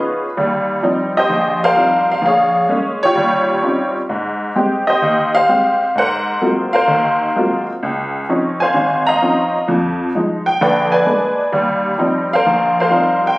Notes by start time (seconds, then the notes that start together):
Already playing: B3 C#4 D#4 F4 G#4 B4
0.37 D#2 G3
0.83 F3 G3 C4 D#4
1.17 G4 C5 D#5
1.30 A#1
1.64 A#4 C5 F5
1.76 F3 G3 C4 D#4
2.12 F5
2.22 A#1 F5
2.27 G#4 C#5
2.69 G#3 A#3 C#4
3.03 F4 G4 C#5
3.16 D#2 G3
3.62 G3 C4 C#4 D#4 F4
4.09 G#2
4.56 G#3 C4 G4
4.87 G4 C5 D#5
5.02 D#2
5.35 C5 F5
5.49 G#3 C4 G4
5.95 G#2 C5 F#5
6.00 A#4
6.42 F#3 G#3 A#3 C4 F4
6.73 A#4 C5 F5
6.88 D#2 D#3
7.36 F#3 G#3 A#3 C4 F4
7.83 C#2
8.29 F3 C4 C#4 D#4
8.60 C5 F5 G#5
8.74 G#1
9.07 D#5 F5 A#5
9.22 F3 C4 C#4 D#4
9.68 F2 F3
10.15 F3 G#3 D#4
10.46 G5
10.61 A#1 D3 B4 D5 G5
10.92 B4 D5 G#5
11.06 G#3 A#3 B3 D4
11.52 D#2 G3
11.98 F3 G3 C4 D#4
12.33 A#4 C5 F5
12.47 A#1
12.80 A#4 C5 F5
12.91 F3 G3 C4 D#4
13.27 G5